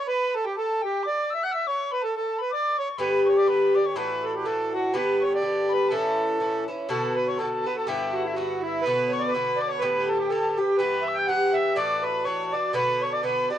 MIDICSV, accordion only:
0, 0, Header, 1, 2, 480
1, 0, Start_track
1, 0, Tempo, 488202
1, 52, Time_signature, 2, 2, 24, 8
1, 13356, End_track
2, 0, Start_track
2, 0, Title_t, "Accordion"
2, 0, Program_c, 0, 21
2, 78, Note_on_c, 0, 71, 109
2, 341, Note_off_c, 0, 71, 0
2, 351, Note_on_c, 0, 69, 87
2, 445, Note_off_c, 0, 69, 0
2, 450, Note_on_c, 0, 67, 92
2, 547, Note_off_c, 0, 67, 0
2, 572, Note_on_c, 0, 69, 99
2, 803, Note_off_c, 0, 69, 0
2, 833, Note_on_c, 0, 67, 102
2, 1036, Note_off_c, 0, 67, 0
2, 1052, Note_on_c, 0, 74, 103
2, 1308, Note_off_c, 0, 74, 0
2, 1318, Note_on_c, 0, 76, 85
2, 1409, Note_off_c, 0, 76, 0
2, 1416, Note_on_c, 0, 78, 94
2, 1502, Note_off_c, 0, 78, 0
2, 1513, Note_on_c, 0, 76, 96
2, 1629, Note_off_c, 0, 76, 0
2, 1651, Note_on_c, 0, 73, 89
2, 1887, Note_off_c, 0, 73, 0
2, 1891, Note_on_c, 0, 71, 80
2, 1989, Note_off_c, 0, 71, 0
2, 2003, Note_on_c, 0, 69, 99
2, 2114, Note_off_c, 0, 69, 0
2, 2129, Note_on_c, 0, 69, 83
2, 2366, Note_off_c, 0, 69, 0
2, 2375, Note_on_c, 0, 71, 78
2, 2471, Note_off_c, 0, 71, 0
2, 2493, Note_on_c, 0, 74, 107
2, 2724, Note_off_c, 0, 74, 0
2, 2746, Note_on_c, 0, 73, 104
2, 2837, Note_off_c, 0, 73, 0
2, 2951, Note_on_c, 0, 71, 106
2, 3219, Note_off_c, 0, 71, 0
2, 3232, Note_on_c, 0, 73, 87
2, 3318, Note_off_c, 0, 73, 0
2, 3328, Note_on_c, 0, 74, 92
2, 3418, Note_off_c, 0, 74, 0
2, 3429, Note_on_c, 0, 71, 87
2, 3696, Note_on_c, 0, 74, 89
2, 3698, Note_off_c, 0, 71, 0
2, 3790, Note_off_c, 0, 74, 0
2, 3799, Note_on_c, 0, 73, 74
2, 3904, Note_off_c, 0, 73, 0
2, 3906, Note_on_c, 0, 71, 92
2, 4169, Note_on_c, 0, 69, 81
2, 4177, Note_off_c, 0, 71, 0
2, 4276, Note_off_c, 0, 69, 0
2, 4283, Note_on_c, 0, 67, 82
2, 4377, Note_on_c, 0, 69, 86
2, 4387, Note_off_c, 0, 67, 0
2, 4653, Note_off_c, 0, 69, 0
2, 4661, Note_on_c, 0, 66, 83
2, 4872, Note_off_c, 0, 66, 0
2, 4874, Note_on_c, 0, 71, 96
2, 5139, Note_on_c, 0, 73, 92
2, 5142, Note_off_c, 0, 71, 0
2, 5242, Note_off_c, 0, 73, 0
2, 5256, Note_on_c, 0, 74, 101
2, 5629, Note_off_c, 0, 74, 0
2, 5639, Note_on_c, 0, 71, 88
2, 5825, Note_on_c, 0, 69, 86
2, 5841, Note_off_c, 0, 71, 0
2, 6531, Note_off_c, 0, 69, 0
2, 6788, Note_on_c, 0, 69, 88
2, 7033, Note_off_c, 0, 69, 0
2, 7039, Note_on_c, 0, 71, 85
2, 7152, Note_off_c, 0, 71, 0
2, 7155, Note_on_c, 0, 73, 80
2, 7252, Note_on_c, 0, 69, 86
2, 7263, Note_off_c, 0, 73, 0
2, 7531, Note_off_c, 0, 69, 0
2, 7531, Note_on_c, 0, 71, 92
2, 7626, Note_on_c, 0, 69, 72
2, 7628, Note_off_c, 0, 71, 0
2, 7730, Note_on_c, 0, 67, 101
2, 7739, Note_off_c, 0, 69, 0
2, 7988, Note_on_c, 0, 66, 89
2, 8010, Note_off_c, 0, 67, 0
2, 8093, Note_on_c, 0, 64, 86
2, 8095, Note_off_c, 0, 66, 0
2, 8187, Note_on_c, 0, 66, 77
2, 8213, Note_off_c, 0, 64, 0
2, 8465, Note_on_c, 0, 64, 89
2, 8479, Note_off_c, 0, 66, 0
2, 8669, Note_on_c, 0, 71, 120
2, 8695, Note_off_c, 0, 64, 0
2, 8933, Note_on_c, 0, 73, 92
2, 8960, Note_off_c, 0, 71, 0
2, 9033, Note_on_c, 0, 74, 94
2, 9059, Note_off_c, 0, 73, 0
2, 9119, Note_on_c, 0, 71, 94
2, 9150, Note_off_c, 0, 74, 0
2, 9399, Note_on_c, 0, 74, 97
2, 9425, Note_off_c, 0, 71, 0
2, 9507, Note_on_c, 0, 73, 86
2, 9519, Note_off_c, 0, 74, 0
2, 9623, Note_on_c, 0, 71, 115
2, 9639, Note_off_c, 0, 73, 0
2, 9901, Note_on_c, 0, 69, 78
2, 9916, Note_off_c, 0, 71, 0
2, 10011, Note_off_c, 0, 69, 0
2, 10013, Note_on_c, 0, 67, 87
2, 10119, Note_on_c, 0, 69, 91
2, 10132, Note_off_c, 0, 67, 0
2, 10377, Note_on_c, 0, 67, 83
2, 10403, Note_off_c, 0, 69, 0
2, 10585, Note_on_c, 0, 71, 109
2, 10587, Note_off_c, 0, 67, 0
2, 10833, Note_on_c, 0, 76, 104
2, 10848, Note_off_c, 0, 71, 0
2, 10954, Note_on_c, 0, 79, 100
2, 10968, Note_off_c, 0, 76, 0
2, 11081, Note_off_c, 0, 79, 0
2, 11083, Note_on_c, 0, 78, 119
2, 11341, Note_on_c, 0, 76, 106
2, 11364, Note_off_c, 0, 78, 0
2, 11564, Note_on_c, 0, 74, 108
2, 11570, Note_off_c, 0, 76, 0
2, 11818, Note_on_c, 0, 71, 86
2, 11844, Note_off_c, 0, 74, 0
2, 12042, Note_on_c, 0, 73, 94
2, 12048, Note_off_c, 0, 71, 0
2, 12308, Note_on_c, 0, 74, 86
2, 12322, Note_off_c, 0, 73, 0
2, 12532, Note_off_c, 0, 74, 0
2, 12534, Note_on_c, 0, 71, 115
2, 12797, Note_on_c, 0, 73, 90
2, 12807, Note_off_c, 0, 71, 0
2, 12906, Note_off_c, 0, 73, 0
2, 12906, Note_on_c, 0, 74, 94
2, 13014, Note_off_c, 0, 74, 0
2, 13018, Note_on_c, 0, 71, 99
2, 13262, Note_off_c, 0, 71, 0
2, 13279, Note_on_c, 0, 74, 95
2, 13356, Note_off_c, 0, 74, 0
2, 13356, End_track
0, 0, End_of_file